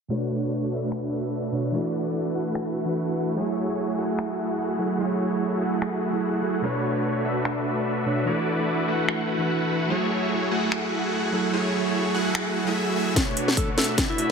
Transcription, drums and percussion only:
0.92 finger snap medium
2.55 finger snap medium
4.19 finger snap medium
5.82 finger snap medium
7.45 finger snap medium
9.09 finger snap medium
10.72 finger snap medium
12.35 finger snap medium
13.16 kick medium
13.16 snare soft
13.16 closed hi-hat medium
13.37 closed hi-hat medium
13.48 snare soft
13.57 kick medium
13.57 closed hi-hat medium
13.78 snare soft
13.78 closed hi-hat soft
13.81 closed hi-hat medium
13.84 closed hi-hat medium
13.98 kick loud
13.98 snare soft
13.98 closed hi-hat medium
14.18 closed hi-hat medium

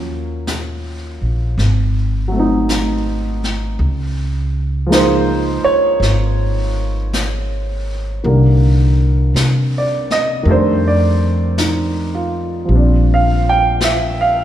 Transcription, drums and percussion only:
0.47 brush sweep soft
0.47 snare soft
0.47 hi-hat pedal soft
1.59 brush sweep soft
1.59 snare soft
2.69 brush sweep soft
2.69 snare soft
2.69 hi-hat pedal medium
3.44 snare soft
3.80 brush sweep soft
4.92 brush sweep soft
4.92 snare soft
4.92 hi-hat pedal soft
6.02 brush sweep soft
6.02 snare soft
7.13 brush sweep soft
7.13 snare soft
7.13 hi-hat pedal medium
8.26 brush sweep soft
9.36 brush sweep soft
9.36 snare soft
9.36 hi-hat pedal medium
10.10 snare soft
10.47 brush sweep soft
11.58 brush sweep soft
11.58 snare medium
11.58 hi-hat pedal soft
12.70 brush sweep soft
13.81 brush sweep soft
13.81 snare medium
13.81 hi-hat pedal soft

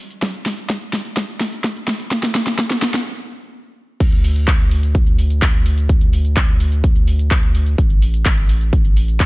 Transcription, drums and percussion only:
0.11 closed hi-hat soft
0.11 shaker soft
0.22 kick loud
0.22 snare medium
0.22 closed hi-hat medium
0.22 shaker soft
0.34 closed hi-hat soft
0.34 shaker soft
0.46 snare medium
0.46 open hi-hat loud
0.46 shaker medium
0.58 closed hi-hat soft
0.58 shaker soft
0.70 kick loud
0.70 snare medium
0.70 closed hi-hat medium
0.70 shaker soft
0.81 closed hi-hat soft
0.81 shaker soft
0.93 snare medium
0.93 open hi-hat loud
0.93 shaker medium
1.05 closed hi-hat soft
1.05 shaker soft
1.17 kick loud
1.17 snare medium
1.17 closed hi-hat medium
1.17 shaker soft
1.29 closed hi-hat soft
1.29 shaker soft
1.41 snare medium
1.41 open hi-hat loud
1.41 shaker medium
1.52 closed hi-hat soft
1.52 shaker soft
1.64 kick loud
1.64 snare medium
1.64 closed hi-hat medium
1.64 shaker soft
1.76 closed hi-hat soft
1.76 shaker soft
1.88 snare medium
1.88 open hi-hat loud
1.88 shaker medium
2.00 closed hi-hat soft
2.00 shaker soft
2.11 kick loud
2.11 snare medium
2.11 closed hi-hat medium
2.11 shaker soft
2.23 snare medium
2.23 closed hi-hat soft
2.23 shaker soft
2.35 snare loud
2.35 open hi-hat loud
2.35 shaker medium
2.47 snare medium
2.47 closed hi-hat soft
2.47 shaker soft
2.59 kick loud
2.59 snare medium
2.59 closed hi-hat medium
2.59 shaker soft
2.71 snare medium
2.71 closed hi-hat soft
2.71 shaker soft
2.82 snare loud
2.82 open hi-hat loud
2.82 shaker medium
2.94 snare medium
2.94 closed hi-hat soft
2.94 shaker soft
4.00 kick loud
4.00 closed hi-hat medium
4.00 crash loud
4.00 shaker soft
4.12 closed hi-hat soft
4.24 open hi-hat loud
4.24 shaker medium
4.36 closed hi-hat soft
4.36 shaker soft
4.48 kick loud
4.48 clap loud
4.48 closed hi-hat loud
4.48 shaker soft
4.59 closed hi-hat soft
4.71 open hi-hat loud
4.71 shaker medium
4.83 closed hi-hat soft
4.83 shaker soft
4.95 kick loud
4.95 closed hi-hat loud
4.95 shaker soft
5.07 closed hi-hat soft
5.18 open hi-hat loud
5.18 shaker medium
5.30 closed hi-hat soft
5.30 shaker soft
5.42 kick loud
5.42 clap loud
5.42 closed hi-hat medium
5.42 shaker soft
5.54 closed hi-hat soft
5.66 open hi-hat loud
5.66 shaker medium
5.78 closed hi-hat soft
5.78 shaker soft
5.89 kick loud
5.89 closed hi-hat medium
5.89 shaker soft
6.01 closed hi-hat soft
6.13 open hi-hat loud
6.13 shaker medium
6.25 closed hi-hat soft
6.25 shaker soft
6.37 kick loud
6.37 clap loud
6.37 closed hi-hat medium
6.37 shaker soft
6.48 closed hi-hat soft
6.60 open hi-hat loud
6.60 shaker medium
6.72 closed hi-hat soft
6.72 shaker soft
6.84 kick loud
6.84 closed hi-hat loud
6.84 shaker soft
6.96 closed hi-hat soft
7.07 open hi-hat loud
7.07 shaker medium
7.19 closed hi-hat soft
7.19 shaker soft
7.31 kick loud
7.31 clap loud
7.31 closed hi-hat loud
7.31 shaker soft
7.43 closed hi-hat soft
7.55 open hi-hat loud
7.55 shaker medium
7.67 closed hi-hat soft
7.67 shaker soft
7.78 kick loud
7.78 closed hi-hat medium
7.78 shaker soft
7.90 closed hi-hat soft
8.02 open hi-hat loud
8.02 shaker medium
8.14 closed hi-hat soft
8.14 shaker soft
8.26 kick loud
8.26 clap loud
8.26 closed hi-hat loud
8.26 shaker soft
8.37 closed hi-hat soft
8.49 open hi-hat loud
8.49 shaker medium
8.61 closed hi-hat soft
8.61 shaker soft
8.73 kick loud
8.73 closed hi-hat medium
8.73 shaker soft
8.85 closed hi-hat soft
8.96 open hi-hat loud
8.96 shaker medium
9.08 closed hi-hat soft
9.08 shaker soft
9.20 kick loud
9.20 clap loud
9.20 closed hi-hat medium
9.20 shaker soft

